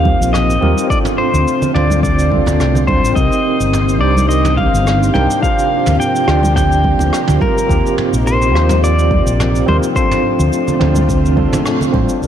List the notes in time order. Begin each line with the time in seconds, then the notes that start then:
Already playing: D#2 C3 F3 A#3 C4 D#4 F4 G4 A#4 C5 F5
0.05 kick, high conga
0.21 A#1, cabasa
0.33 D#5, cross-stick, mid tom, cabasa
0.50 cabasa
0.61 D#2 C4 F4 G4 A#4, high conga
0.78 cabasa
0.87 A3 C4 D4 F4 C5 D5, kick, cabasa
0.92 A4
1.05 mid tom, cabasa
1.18 C5
1.34 D2, cabasa
1.48 cabasa
1.62 low conga, cabasa
1.73 D2 C4 D4 F4 C5 D5, mid tom
1.90 high conga, cabasa
2.03 D5, kick, cabasa
2.19 cabasa
2.31 C4 D4 F4 A4, kick, high conga
2.46 D2, mid tom, low conga, cabasa
2.60 C2, cross-stick, cabasa
2.75 low conga, cabasa
2.87 D2 C4 D4 F4 C5, kick, high conga
3.03 A1, cabasa
3.14 C2 D#3 A#3 C4 D#4 G4 D#5, kick, cabasa
3.19 A#4
3.32 cabasa
3.60 G1, cabasa
3.73 mid tom, cabasa
3.89 cabasa
3.99 C2 D4 D#4 G4 D5
4.04 C5
4.17 high conga, cabasa
4.29 D#5, cabasa
4.45 mid tom, cabasa
4.57 F5, kick, high conga
4.73 G1, cabasa
4.87 cross-stick, cabasa
5.03 cabasa
5.14 C2 D4 D#4 G4 A#4 G5, mid tom, high conga
5.31 cabasa
5.41 F3 D4 F4 G4 F5, kick, cabasa
5.45 C5
5.59 cabasa
5.86 D2, mid tom, cabasa
6.00 G5, cabasa
6.16 cabasa
6.26 D2 D4 F4 G4, cross-stick
6.31 D5
6.43 high conga, cabasa
6.56 G5, kick, mid tom, cabasa
6.72 cabasa
6.84 kick, high conga
6.99 D2, low conga, cabasa
7.13 cross-stick, cabasa
7.28 D2, mid tom, low conga, cabasa
7.39 F3 C4 D#4 F4 G4 A#4, kick, high conga
7.58 cabasa
7.67 D#2 C4 F4 G4, kick
7.71 A#4, cabasa
7.86 cabasa
7.98 mid tom
8.13 A#1, cabasa
8.27 C5, cabasa
8.42 cabasa
8.52 D#2 C4 F4 G4, cross-stick
8.57 C5
8.69 mid tom, high conga, cabasa
8.84 D5, cabasa
8.99 cabasa
9.11 kick, high conga
9.26 A#1, cabasa
9.40 cross-stick, mid tom, cabasa
9.55 cabasa
9.66 D#2 C4 F4 G4 A#4 C5, high conga
9.83 cabasa
9.93 C3 A3 C4 D4 F4 C5, kick, cabasa
9.98 A4
10.11 mid tom, cabasa
10.39 D2, cabasa
10.53 cabasa
10.68 low conga, cabasa
10.79 D2 C4 D4 F4 C5, mid tom
10.96 high conga, cabasa
11.09 kick, cabasa
11.26 cabasa
11.36 C4 D4 F4 A4, kick, high conga
11.53 mid tom, low conga, cabasa
11.66 cross-stick, cabasa
11.81 low conga, cabasa
11.93 A1 C4 D4 F4 C5, kick, high conga
12.09 cabasa
12.20 C2 C3 D#3 A#3 D4 D#4 G4 D5, cabasa